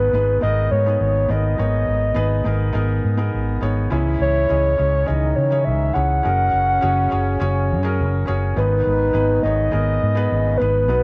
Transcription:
Already playing: G#2 D#3 B3 D#4 G#4 B4
0.13 G#1 B3 D#4 G#4 B4
0.41 G#1 B3 D#4 G#4 A#4 D#5
0.71 G#2 C#5
0.86 B3 D#4 G#4 B4
1.01 G#1 C#5
1.29 G#1 B3 D#4 G#4 A#4 D#5
1.58 G#1 G#2 D#3 B3 D#4 G#4 C#5
1.88 G#1
2.15 G#1 B3 D#4 G#4 B4
2.44 G#1 B3 D#4 G#4 A#4
2.73 G#1 B3 D#4 G#4 A#4
3.05 G#2
3.17 B3 D#4 G#4 A#4
3.34 G#1
3.61 G#1 B3 D#4 G#4 C#5
3.90 C#2 G#2 E3 C#4 E4 G#4 C#5
4.20 C#2 C#5
4.49 C#2 C#4 E4 G#4 D#5
4.77 C#2 C#4 E4 G#4 C#5
5.06 C#2 D#3 E3 C#4 D#4 G#4 C#5 D#5
5.36 C#3 C#5
5.50 E3 C#4 G#4 C#5
5.64 C#2 E5
5.93 C#2 C#4 E4 G#4 C#5 F#5
6.23 F#1 C#3 C#4 F#4 G#4 A#4
6.53 F#1
6.81 F#1 C#4 F#4 G#4 C#5
7.10 F#1 C#4 F#4 G#4 C#5
7.40 F#1 C#4 F#4 G#4 C#5
7.72 F#2
7.83 C#4 F#4 G#4 A#4
8.01 F#1
8.26 F#1 C#4 F#4 G#4 C#5
8.55 G#1 G#2 D#3 B3 D#4 G#4 B4
8.87 G#1
9.13 G#1 B3 D#4 G#4 B4
9.43 G#1 B3 D#4 G#4 C#5 D#5
9.71 G#1 B3 D#4 G#4 A#4
10.03 G#2
10.15 B3 D#4 G#4 B4
10.31 G#1 C#3 C#4
10.57 G#1 B3 D#4 G#4 B4
10.61 B4
10.88 B1 B2 F#3 B3 D#4 F#4 B4

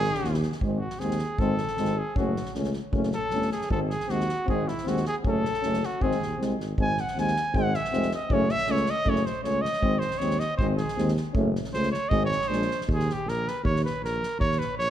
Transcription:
Already playing: D#3 G#4
0.04 snare
0.14 snare
0.24 D#2, snare
0.34 snare
0.42 snare
0.52 snare
0.61 G#1 G#3 C4, kick
0.79 F#4
0.90 snare
0.99 D#2 G#3 C4 G#4, snare
1.11 snare
1.19 snare
1.39 G#1 G#3 C4 A4, kick
1.57 snare
1.67 snare
1.77 G#1 G#3 C4, snare
1.85 snare
1.98 G#4
2.16 F#1 A3 C#4 F#4, kick
2.36 snare
2.45 snare
2.55 C#2 A3 C#4, snare
2.64 snare
2.73 snare
2.92 F#1 A3 C#4, kick
3.03 snare
3.12 A4, snare
3.30 G1 A3 C#4, snare
3.41 snare
3.52 G#4, snare
3.61 snare
3.69 G#1 G#3 C4 A4, kick
3.90 G#4, snare
4.00 snare
4.08 D#2 G#3 C4 F#4, snare
4.20 snare
4.29 snare
4.46 G#1 G#3 C4 G#4, kick
4.68 E4, snare
4.78 snare
4.84 D#2 G#3 C4, snare
4.89 F#4
4.97 snare
5.05 G#4, snare
5.24 F#1 A3 C#4 A4, kick
5.45 snare
5.53 snare
5.62 F#1 A3 C#4, snare
5.73 snare
5.83 F#4, snare
6.01 G#1 G#3 C4 G#4, kick
6.11 snare
6.21 D#2, snare
6.38 C2 G#3 C4, snare
6.58 G#1, snare
6.78 G#1 G#3 C4 G#5, kick
6.97 F#5, snare
7.07 snare
7.16 D#2 G#3 C4 G#5, snare
7.27 snare
7.36 snare
7.53 G#1 G#3 C4, kick
7.57 F#5
7.74 E5, snare
7.84 snare
7.92 F1 G#3 C4, snare
8.02 snare
8.11 D#5, snare
8.29 F#1 A3 C#4, kick
8.33 C#5
8.49 E5, snare
8.58 snare
8.67 C#2 A3 C#4, snare
8.71 C#5
8.76 snare
8.86 snare
8.90 D#5
9.05 F#1 A3 C#4, kick
9.09 C#5
9.16 snare
9.26 C5, snare
9.44 C#2 A3 C#4 C#5, snare
9.61 D#5, snare
9.73 snare
9.81 G#1 G#3 C4, kick
9.99 C5, snare
10.11 snare
10.18 D#2 G#3 C4 C#5, snare
10.30 snare
10.39 D#5, snare
10.57 G#1 G#3 C4 C5, kick
10.76 G#4, snare
10.88 snare
10.97 D#2 G#3 C4, snare
11.08 snare
11.17 snare
11.33 F#1 A3 C#4, kick
11.55 snare
11.64 snare
11.73 C#2 A3 C#4 C5, snare
11.83 snare
11.92 C#5, snare
12.09 G#1 G#3 C4 D#5, kick
12.25 C#5
12.32 snare
12.41 snare
12.48 A#1 G#3 D4 C5
12.52 snare
12.62 snare
12.71 snare
12.81 snare
12.87 D#2, kick
12.93 G#4
12.99 snare
13.10 G4, snare
13.25 A#1 A#4, snare
13.47 B4, snare
13.63 D#2 C#5, kick
13.76 snare
13.85 B4, snare
14.01 A#1 A#4, snare
14.23 snare
14.38 D#2 C#5, kick
14.51 snare
14.59 B4, snare
14.77 A#1 C#5, snare

